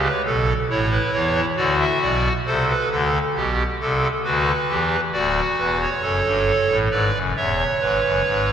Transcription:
0.02 0.22 B4 medium
0.25 0.53 B1 medium
0.25 0.53 B2 medium
0.25 0.53 A4 medium
0.70 0.97 A1 medium
0.70 0.97 A2 medium
0.70 1.46 E4 medium
0.70 0.89 C#5 medium
0.91 1.10 B4 medium
1.13 1.41 E2 medium
1.13 1.41 E3 medium
1.13 1.41 C#5 medium
1.56 1.84 D2 medium
1.56 1.85 D3 medium
1.56 2.33 F#4 medium
1.56 1.76 D5 medium
1.79 1.98 E5 medium
2.01 2.29 B1 medium
2.01 2.29 B2 medium
2.01 2.29 D5 medium
2.45 2.73 C2 medium
2.45 2.73 C3 medium
2.45 2.89 A4 medium
2.45 2.65 C5 medium
2.69 2.88 B4 medium
2.91 3.18 D2 medium
2.91 3.18 D3 medium
2.91 3.18 A4 medium
3.35 3.63 B1 medium
3.35 3.63 B2 medium
3.35 3.63 G4 medium
3.80 4.07 C2 medium
3.80 4.07 C3 medium
3.80 4.07 A4 medium
4.24 4.52 D2 medium
4.24 4.51 D3 medium
4.24 4.52 F#4 medium
4.24 5.01 B4 medium
4.68 4.96 E2 medium
4.68 4.96 E3 medium
4.68 4.96 G4 medium
5.13 5.41 D1 medium
5.13 5.41 D2 medium
5.13 5.89 F#4 medium
5.13 5.40 D5 medium
5.58 5.86 E1 medium
5.58 5.86 E2 medium
5.58 5.77 B4 medium
5.81 6.76 C#5 medium
6.01 6.21 F#1 medium
6.01 6.20 F#2 medium
6.01 6.78 A4 medium
6.23 6.51 G1 medium
6.23 6.52 G2 medium
6.68 6.88 A1 medium
6.68 6.88 A2 medium
6.91 7.10 G#1 medium
6.91 7.10 G#2 medium
6.91 7.18 B4 medium
6.91 7.18 D5 medium
7.13 7.33 F#1 medium
7.13 7.33 F#2 medium
7.36 7.64 E1 medium
7.36 7.63 E2 medium
7.36 8.53 C#5 medium
7.36 7.64 E5 medium
7.80 8.00 G#1 medium
7.80 8.00 G#2 medium
7.80 8.53 B4 medium
8.01 8.21 F#1 medium
8.01 8.21 F#2 medium
8.25 8.52 G#1 medium
8.25 8.53 G#2 medium

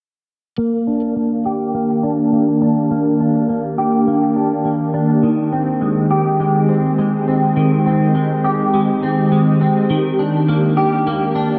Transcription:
0.58 11.59 D#3 medium
0.58 1.15 A#3 medium
0.58 5.20 A#3 medium
0.58 5.20 D4 medium
0.58 11.59 G4 medium
0.87 2.02 D4 soft
1.16 1.73 A#3 soft
1.45 3.78 G4 medium
1.74 2.31 A#3 medium
2.03 2.61 D4 soft
2.33 2.90 A#3 soft
2.62 3.19 D4 medium
2.91 3.48 A#3 medium
3.20 4.35 D4 soft
3.49 4.06 A#3 medium
3.78 5.84 G4 medium
4.07 4.64 A#3 medium
4.36 4.93 D4 soft
4.65 5.29 A#3 medium
4.94 5.29 D4 medium
5.23 7.56 D#3 medium
5.23 9.86 G#3 medium
5.23 9.86 C4 medium
5.53 6.67 C4 medium
5.81 6.39 G#3 soft
6.11 8.44 G4 medium
6.40 6.97 G#3 medium
6.69 7.27 C4 medium
6.98 8.14 G#3 medium
7.28 7.85 C4 medium
7.57 9.90 D#3 medium
7.86 9.02 C4 medium
8.15 8.72 G#3 soft
8.44 10.77 G4 medium
8.74 9.31 G#3 medium
9.03 9.60 C4 soft
9.32 9.96 G#3 soft
9.61 9.96 C4 soft
9.90 11.59 D#3 medium
9.90 11.59 A#3 medium
9.90 11.59 D4 medium
10.19 11.34 D4 medium
10.48 11.06 A#3 soft
10.77 11.59 G4 medium
11.07 11.59 A#3 medium
11.35 11.59 D4 medium

